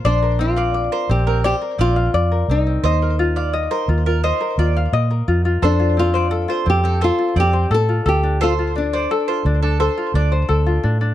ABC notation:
X:1
M:4/4
L:1/16
Q:1/4=86
K:Bb
V:1 name="Mandolin"
c2 z d z c z B c2 d z4 z | c2 z d z c z B c2 d z4 z | c2 z d z c z A c2 d z4 z | c2 z d z c z A c2 d z4 z |]
V:2 name="Ukulele"
d B C f d B C C d B C f d B C C | e B F f e B F F e B F f e B F F | A F C c A F C C A F C c A F A D | A F D c A F D D A F D c A F D D |]
V:3 name="Nylon-string guitar"
D2 F4 G2 G2 F4 E2- | E8- E2 z6 | D2 F4 G2 F2 G2 A2 G2 | F2 D6 z8 |]
V:4 name="Fingered electric bass" clef=bass
B,,,4- B,,, z B,,,3 z B,,,2 F,,2 C,,2 | E,,4- E,, z E,,3 z E,,2 B,,2 F,,2 | F,,4- F,, z F,,3 z F,,2 A,,2 D,,2- | D,,4- D,, z D,,3 z D,,2 D,,2 A,,2 |]